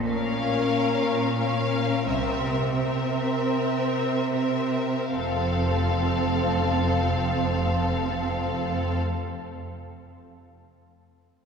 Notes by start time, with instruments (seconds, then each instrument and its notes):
Already playing: double bass section A#1, cello section A#2
0.06 viola section C#4, violin section F5
0.10 violin section A#4
0.73 cello section A#2
1.38 viola section C#4, violin section A#4 F5
2.08 double bass section C2, cello section C3, viola section C4, violin section A#4 E5
2.79 viola section C4, violin section A#4 E5
3.54 cello section C3
4.33 viola section C4, violin section A#4 E5
5.13 double bass section F1, cello section F2, viola section C4, violin section F5
5.18 violin section A4